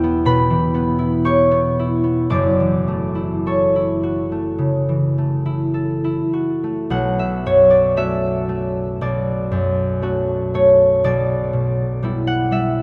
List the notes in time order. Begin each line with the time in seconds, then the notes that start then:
Already playing: E1 E2 E3 E4 G4 C#5 E5 G5 C#6 E6
0.04 B3
0.25 B2 B4 B5
0.50 E3
0.74 B3
0.99 E4
1.25 G4 C#5 C#6
1.51 B3
1.79 E4
2.04 B3
2.30 F#1 F#2 D5 D6
2.60 E3
2.88 A3
3.15 E4
3.46 A4 C#5 C#6
3.76 E4
4.03 F#4
4.32 A3
4.58 C#3
4.89 E3
5.18 A3
5.46 E4
5.74 A4
6.04 E4
6.33 F#4
6.64 A3
6.90 B1 F#5
7.19 E5
7.46 F#2 C#5
7.70 D5
7.96 A3 C#4 F#4 E5
8.49 A3
9.01 B1 D5
9.51 F#2
10.02 A3 C#4 F#4
10.54 A3 C#5
11.04 B1 D5
11.53 B2
12.03 G3 B3 E4
12.27 F#5
12.51 G3 E5